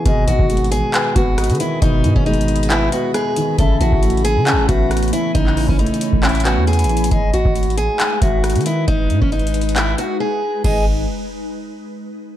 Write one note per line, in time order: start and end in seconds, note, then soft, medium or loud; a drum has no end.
0.05 0.27 G#1 loud
0.05 1.16 B2 loud
0.05 0.23 G#4 medium
0.05 3.55 G#4 medium
0.05 0.47 D#5 loud
0.05 3.55 D#5 medium
0.05 7.07 B5 medium
0.05 kick loud
0.05 closed hi-hat medium
0.27 0.39 G#1 loud
0.27 1.38 D#3 medium
0.27 0.69 F#4 medium
0.27 closed hi-hat medium
0.39 0.73 G#1 loud
0.39 kick medium
0.50 1.60 G#3 medium
0.50 closed hi-hat medium
0.57 closed hi-hat medium
0.64 closed hi-hat soft
0.71 0.83 A1 loud
0.71 1.13 G#4 loud
0.71 closed hi-hat medium
0.94 2.04 B4 medium
0.94 1.15 G#5 medium
0.94 clap loud
0.94 closed hi-hat medium
1.16 1.51 G#1 loud
1.16 2.26 B3 medium
1.16 1.57 F#4 medium
1.16 1.37 F#5 medium
1.16 kick loud
1.16 closed hi-hat medium
1.38 cross-stick medium
1.38 closed hi-hat medium
1.44 closed hi-hat medium
1.50 1.80 D#3 loud
1.50 closed hi-hat medium
1.55 closed hi-hat soft
1.60 2.03 D#3 medium
1.60 1.78 E4 medium
1.60 closed hi-hat loud
1.82 2.06 G#1 loud
1.82 2.92 B2 medium
1.82 2.14 D#4 loud
1.82 kick loud
1.82 closed hi-hat medium
2.04 2.15 G#2 loud
2.04 3.14 D#3 medium
2.04 closed hi-hat medium
2.16 2.89 G#1 loud
2.16 2.24 C#4 medium
2.16 kick loud
2.26 3.37 G#3 medium
2.26 2.68 D#4 medium
2.26 closed hi-hat soft
2.34 closed hi-hat soft
2.41 closed hi-hat medium
2.48 closed hi-hat medium
2.56 closed hi-hat medium
2.63 closed hi-hat medium
2.70 2.88 E4 medium
2.70 3.59 B4 medium
2.70 clap loud
2.70 closed hi-hat medium
2.92 3.59 B3 medium
2.92 3.10 F#4 medium
2.92 closed hi-hat medium
3.14 3.56 G#4 medium
3.14 cross-stick medium
3.14 closed hi-hat medium
3.36 3.59 D#3 medium
3.36 closed hi-hat medium
3.58 3.80 A1 loud
3.58 4.69 C#3 medium
3.58 7.08 A3 medium
3.58 3.77 A4 medium
3.58 7.08 C#5 medium
3.58 4.00 E5 loud
3.58 kick loud
3.58 closed hi-hat medium
3.80 3.92 A1 loud
3.80 4.91 E3 medium
3.80 4.22 F#4 medium
3.80 closed hi-hat medium
3.92 4.38 A1 loud
3.92 kick medium
4.03 5.13 A3 medium
4.03 closed hi-hat medium
4.10 closed hi-hat medium
4.17 closed hi-hat soft
4.24 4.66 G#4 medium
4.24 closed hi-hat medium
4.36 4.54 C#3 loud
4.47 5.57 C#4 medium
4.47 4.68 A5 medium
4.47 clap loud
4.47 closed hi-hat medium
4.53 4.68 A1 loud
4.69 5.11 A1 loud
4.69 5.79 B3 medium
4.69 5.10 F#4 medium
4.69 4.90 E5 medium
4.69 kick loud
4.69 closed hi-hat medium
4.91 cross-stick medium
4.91 closed hi-hat medium
4.97 closed hi-hat medium
5.03 closed hi-hat medium
5.08 closed hi-hat soft
5.13 5.56 E3 medium
5.13 5.31 E4 medium
5.13 closed hi-hat loud
5.35 5.67 A1 loud
5.35 6.45 C#3 medium
5.35 5.67 D#4 loud
5.35 kick loud
5.35 closed hi-hat medium
5.47 clap medium
5.57 6.67 E3 medium
5.57 open hi-hat medium
5.69 5.90 A1 loud
5.69 5.77 C#4 medium
5.69 kick medium
5.79 6.89 A3 medium
5.79 6.21 D#4 medium
5.79 closed hi-hat medium
5.86 closed hi-hat medium
5.94 closed hi-hat medium
6.01 closed hi-hat medium
6.13 6.59 A1 loud
6.13 kick medium
6.23 7.11 C#4 medium
6.23 6.41 E4 medium
6.23 clap loud
6.23 closed hi-hat medium
6.29 closed hi-hat medium
6.35 closed hi-hat medium
6.40 closed hi-hat medium
6.45 7.12 B3 medium
6.45 6.63 F#4 medium
6.45 clap loud
6.45 closed hi-hat medium
6.57 6.86 E2 loud
6.67 7.09 G#4 medium
6.67 closed hi-hat soft
6.73 closed hi-hat medium
6.79 closed hi-hat medium
6.84 7.10 A1 loud
6.84 closed hi-hat medium
6.89 7.11 E3 medium
6.89 closed hi-hat medium
6.97 closed hi-hat medium
7.04 closed hi-hat medium
7.11 7.33 G#1 loud
7.11 10.61 G#3 medium
7.11 10.61 D#4 medium
7.11 7.29 G#4 medium
7.11 10.61 B4 medium
7.11 7.53 D#5 loud
7.11 kick loud
7.11 closed hi-hat medium
7.33 7.45 G#1 loud
7.33 7.75 F#4 medium
7.33 closed hi-hat medium
7.45 7.79 G#1 loud
7.45 kick medium
7.56 closed hi-hat medium
7.63 closed hi-hat medium
7.70 closed hi-hat soft
7.77 7.89 A1 loud
7.77 8.19 G#4 medium
7.77 closed hi-hat medium
8.00 8.21 G#5 medium
8.00 clap loud
8.00 closed hi-hat medium
8.22 8.57 G#1 loud
8.22 8.63 F#4 medium
8.22 8.43 E5 medium
8.22 kick loud
8.22 closed hi-hat medium
8.44 cross-stick medium
8.44 closed hi-hat medium
8.50 closed hi-hat medium
8.55 8.86 D#3 loud
8.55 closed hi-hat medium
8.61 closed hi-hat soft
8.66 8.84 E4 medium
8.66 closed hi-hat medium
8.88 9.12 G#1 loud
8.88 9.19 D#4 loud
8.88 kick loud
8.88 closed hi-hat medium
9.10 9.21 G#2 loud
9.10 closed hi-hat medium
9.22 9.95 G#1 loud
9.22 9.30 C#4 medium
9.22 kick loud
9.32 9.74 D#4 medium
9.32 closed hi-hat soft
9.39 closed hi-hat soft
9.47 closed hi-hat medium
9.54 closed hi-hat medium
9.61 closed hi-hat medium
9.69 closed hi-hat medium
9.76 9.94 E4 medium
9.76 clap loud
9.76 closed hi-hat medium
9.98 10.16 F#4 medium
9.98 closed hi-hat medium
10.20 10.62 G#4 medium
10.64 11.05 G#1 loud
10.64 10.85 G#4 medium
10.64 10.85 D#5 medium
10.64 kick loud
10.64 crash medium